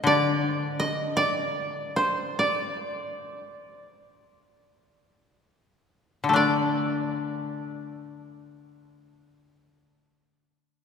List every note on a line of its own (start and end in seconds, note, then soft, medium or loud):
0.00 2.38 D3 soft
0.00 0.13 D#5 medium
0.07 0.52 D5 medium
0.52 0.86 C5 medium
0.80 1.23 D#5 medium
1.17 2.38 D5 medium
1.96 3.68 C5 medium
2.39 5.18 D5 medium
6.24 9.82 D3 soft
6.29 9.87 A3 soft
6.33 9.92 D4 soft
6.33 9.90 D5 medium